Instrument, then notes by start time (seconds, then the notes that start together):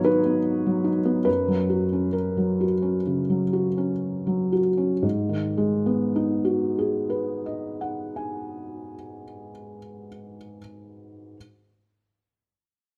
felt piano
Already playing: G#2 D#3 F#3 B3 D#4 C#5 D#5 F5
0.05 D#4 B4
0.25 B3
0.66 F#3
0.84 D#4
1.05 B3
1.25 F#2 B4
1.48 F#3
1.70 F#4
1.93 C#4
2.13 A#4
2.37 F#3
2.61 F#4
2.82 C#4
3.07 C#3
3.30 F#3
3.53 F#4
3.78 C#4
4.27 F#3
4.53 F#4
4.77 C#4
5.03 G#2
5.29 D#3
5.58 G#3
5.86 B3
6.16 D#4
6.45 F#4
6.78 G#4
7.10 B4
7.46 D#5
7.81 F#5
8.16 G#5